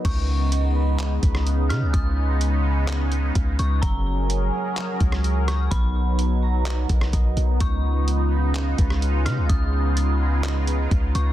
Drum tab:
CC |x---------------|----------------|----------------|----------------|
HH |x---x---x-x-x-x-|x---x---x-x-x-x-|x---x---x-x-x-x-|x---x---x-x-x-x-|
CP |--------x-------|--------x-------|--------x-------|--------x-------|
SD |-----------r--r-|----------------|-----------r--r-|-----------r----|
BD |o---------o-----|o-----------o---|o---------o-----|o---------o-o---|

CC |----------------|----------------|
HH |x---x---x-x-x-x-|x---x---x-x-x-x-|
CP |--------x-------|--------x-------|
SD |-----------r--r-|----------------|
BD |o---------o-----|o-----------o---|